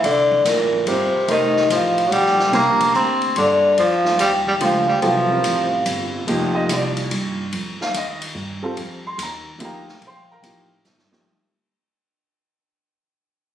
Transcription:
0.04 upright bass C2, tenor saxophone D3, ride
0.08 vibraphone D5
0.32 kick
0.45 upright bass A1, tenor saxophone A#2, snare, hi-hat pedal, ride
0.49 vibraphone A#4
0.73 kick
0.86 upright bass G1, tenor saxophone C3, upright piano G3 C4 F4 A#4, ride
0.92 vibraphone C5
1.15 muted upright bass stroke
1.28 upright bass F1, tenor saxophone D#3, upright piano A3 D#4 G4 C5, ride
1.33 vibraphone D#5
1.56 snare
1.70 upright bass A1, tenor saxophone F3, vibraphone F5, hi-hat pedal, ride
1.98 ride
2.07 tenor saxophone F#3, vibraphone F#5
2.11 upright bass A#1, tenor saxophone G3, ride
2.16 vibraphone G5
2.26 snare
2.39 snare
2.52 upright bass C2, upright piano A#3 D4 G4 C5, tenor saxophone A#3, snare, ride
2.59 vibraphone A#5
2.66 upright bass A#1
2.80 upright bass F1, kick, ride
2.94 upright bass D2, tenor saxophone C4, hi-hat pedal
2.99 vibraphone C6
3.21 ride
3.36 upright bass G2, tenor saxophone D3, ride
3.41 vibraphone D5
3.78 upright bass F2, tenor saxophone F3, ride
3.82 vibraphone F5
4.05 snare
4.19 upright bass D#2, tenor saxophone G3, vibraphone G5, hi-hat pedal, ride
4.47 tenor saxophone G3, vibraphone G5, kick
4.60 upright bass C#2, tenor saxophone F3, upright piano A3 D4 G4 C5, vibraphone F5, ride
4.88 tenor saxophone G3, vibraphone G5
5.02 upright bass C2, tenor saxophone F3, upright piano F#3 B3 E4 A4, ride
5.06 vibraphone F5
5.30 upright piano G3 C4 F4 A#4
5.44 upright bass A1, hi-hat pedal, ride
5.85 upright bass G1, hi-hat pedal, ride
6.27 upright bass F1, upright piano F3 A#3 D#4 G4, ride
6.55 upright piano D#5
6.69 upright bass C2, upright piano D5, hi-hat pedal, ride
6.97 ride
7.11 upright bass G2, ride
7.52 upright bass F2, ride
7.81 upright piano F5, muted upright bass stroke, snare
7.94 upright bass D#2, upright piano D#5, hi-hat pedal, ride
8.22 ride
8.35 upright bass G2
8.63 upright piano G3 C4 F4 A4
8.77 upright bass F2, ride
9.07 upright piano C6
9.18 upright bass D#2, hi-hat pedal, ride
9.23 upright piano A#5
9.59 upright bass D2, upright piano F3 A#3 D#4 G4, ride
9.64 upright piano A#4 F5 G5 A#5
9.88 snare
10.01 upright bass A#1, ride
10.07 upright piano C5 F5 G5 C6
10.31 upright piano A#4 F5 G5 A#5
10.42 upright bass A1, upright piano F3 A#3 D#4 G4, hi-hat pedal, ride
10.85 upright bass G1, snare, hi-hat pedal
10.99 snare
11.11 upright piano F3 A#3 D#4 G4, snare

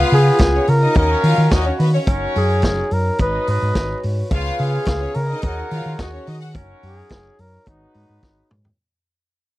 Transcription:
Already playing: french horn section C#3 B3 F4, horn section B3 F4 G#4 B4, string section F4 F5
0.12 fingered electric bass C#3, flugelhorn G#4, open hi-hat
0.38 fingered electric bass C#2, kick, snare, closed hi-hat
0.54 string section C#4 C#5
0.67 fingered electric bass C#3, flugelhorn A#4, open hi-hat
0.82 string section D#4 D#5
0.95 fingered electric bass D#2, french horn section D#3 C#4 F#4 F5, horn section C#4 F#4 A#4 C#5, flugelhorn A#4, kick, closed hi-hat
1.24 fingered electric bass D#3, string section F4 F5, open hi-hat
1.38 fingered electric bass D#3
1.51 fingered electric bass D#2, string section D#4 D#5, flugelhorn F#4, kick, snare, closed hi-hat
1.66 string section C#4 C#5
1.80 fingered electric bass D#3, string section B3 B4, open hi-hat
1.94 string section C#4 C#5
2.07 fingered electric bass F#1, french horn section F#3 D#4 C#5, horn section C#4 F#4 A#4 C#5, kick, closed hi-hat
2.36 fingered electric bass F#2, flugelhorn G#4, open hi-hat
2.62 fingered electric bass F#1, kick, snare, closed hi-hat
2.91 fingered electric bass F#2, flugelhorn A#4, open hi-hat
3.18 fingered electric bass G#1, french horn section G#3 F#4 B4, horn section D#4 B4 D#5, flugelhorn B4, kick, closed hi-hat
3.47 fingered electric bass G#2, flugelhorn B4, open hi-hat
3.62 fingered electric bass G#2
3.75 fingered electric bass G#1, kick, snare, closed hi-hat
4.03 fingered electric bass G#2, open hi-hat
4.31 fingered electric bass C#2, french horn section C#3 B3 G#4, horn section F4 B4 C#5 F5, string section F4 F5, kick, closed hi-hat
4.59 fingered electric bass C#3, flugelhorn G#4, open hi-hat
4.85 fingered electric bass C#2, kick, snare, closed hi-hat
5.01 string section C#4 C#5
5.14 fingered electric bass C#3, flugelhorn A#4, open hi-hat
5.29 string section D#4 D#5
5.42 fingered electric bass D#2, french horn section D#3 C#4 F#4, horn section F#4 A#4 C#5 F#5, flugelhorn A#4, kick, closed hi-hat
5.71 fingered electric bass D#3, string section F4 F5, open hi-hat
5.86 fingered electric bass D#3
5.99 fingered electric bass D#2, string section D#4 D#5, flugelhorn F#4, kick, snare, closed hi-hat
6.13 string section C#4 C#5
6.27 fingered electric bass D#3, string section D#4 D#5, open hi-hat
6.40 string section F#4 F#5
6.55 fingered electric bass F#1, french horn section F#3 D#4 C#5, horn section C#4 F#4 A#4 C#5, kick, closed hi-hat
6.83 fingered electric bass F#2, flugelhorn G#4, open hi-hat
7.09 fingered electric bass F#1, kick, snare, closed hi-hat
7.39 fingered electric bass F#2, flugelhorn A#4, open hi-hat
7.66 fingered electric bass G#1, french horn section G#3 F#4 B4, horn section B3 D#4 F#4 B4, flugelhorn D#4, kick, closed hi-hat
7.94 fingered electric bass G#2, open hi-hat
8.10 fingered electric bass G#2
8.23 kick, snare
8.51 fingered electric bass G#2, mid tom
8.65 floor tom

